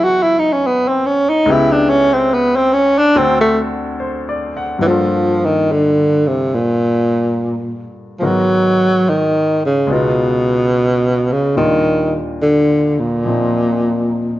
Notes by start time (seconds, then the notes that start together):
Already playing: E2 E3 F#3 G#3 B3 D#4 E4 F#4 G#4
0.04 F#4
0.23 E4
0.39 D#4
0.53 C#4
0.67 B3
0.88 C4
1.06 C#4
1.29 D#4
1.46 C#2 C#3 B3 E4
1.50 E4 G4
1.72 D4
1.89 C#4
2.13 C4
2.34 B3
2.56 C4
2.73 C#4
2.98 D4
3.15 D2 D3 C4 F#4 A4
3.41 A3
4.00 C5
4.29 D5
4.57 F#5
4.79 G2 E3 D4
4.85 F3 A#3 F4
4.90 A4
5.45 D#3
5.72 D3
6.27 C3
6.54 A#2
8.19 G#2 D#3 F3 B3 F#4 A#4
8.25 F#3
9.09 D#3
9.66 C#3
9.87 C#2 C#3 B3 D#4
9.92 B2 F4
11.32 C#3
11.56 D#2 A#2 D#3 G3 D4 F4
12.42 D3
13.00 A#2
13.24 A#2 F3 C4 D#4